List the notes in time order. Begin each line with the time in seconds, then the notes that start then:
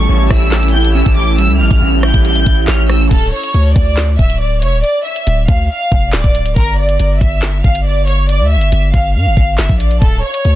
Already playing: G3 A3 C#4 E4 G4 A4 C#6
0.09 A1 C#4
0.30 A1 E4 E6, kick, cross-stick, closed hi-hat
0.52 G4, snare, clap, closed hi-hat
0.57 closed hi-hat
0.63 closed hi-hat
0.68 closed hi-hat
0.74 E4 G6
0.84 closed hi-hat
0.94 C#4 E6
1.06 A1, kick, closed hi-hat
1.17 A3 D6
1.38 G3 E6, closed hi-hat
1.49 C#2
1.60 A1 A3 F6
1.71 A1, kick, closed hi-hat
1.82 A1 C#4
2.03 E4 G6, cross-stick
2.14 A1, kick
2.25 G4 G6, closed hi-hat
2.36 closed hi-hat
2.46 A1 E4, kick, closed hi-hat
2.68 A1 C#4 F6, snare, clap, closed hi-hat
2.89 A3 E6, cross-stick, open hi-hat
3.11 D1 A4, kick, closed hi-hat, crash
3.33 C#5
3.43 closed hi-hat
3.54 D2, closed hi-hat
3.76 D2 D5, kick, closed hi-hat
3.97 snare, clap, closed hi-hat
4.19 D1 E5, kick
4.30 closed hi-hat
4.41 D5
4.62 F1 C#5, closed hi-hat
4.73 D1
4.84 D5, closed hi-hat
5.05 E5
5.16 closed hi-hat
5.27 D1, closed hi-hat
5.48 D2 F5, kick, closed hi-hat
5.70 F5
5.92 F1, kick
6.13 D1 D5, snare, clap
6.24 D1, kick
6.35 closed hi-hat
6.46 closed hi-hat
6.56 G1 A#4, kick, closed hi-hat
6.78 D5
6.89 closed hi-hat
7.00 G1, closed hi-hat
7.21 G1 E5, kick, closed hi-hat
7.42 snare, clap, closed hi-hat
7.64 G1 F5, kick
7.75 closed hi-hat
7.86 D5
8.07 C#5, closed hi-hat
8.29 D5, closed hi-hat
8.40 D2
8.51 E5
8.56 G1
8.61 closed hi-hat
8.72 G1, closed hi-hat
8.94 G1 F5, kick, closed hi-hat
9.15 G2 F5
9.26 G1
9.37 G1, kick
9.58 G1 E5, snare, clap
9.69 A#1, kick
9.80 D5, closed hi-hat
9.91 closed hi-hat
10.02 D1 A4, kick, closed hi-hat
10.23 C#5
10.34 closed hi-hat
10.45 D2, closed hi-hat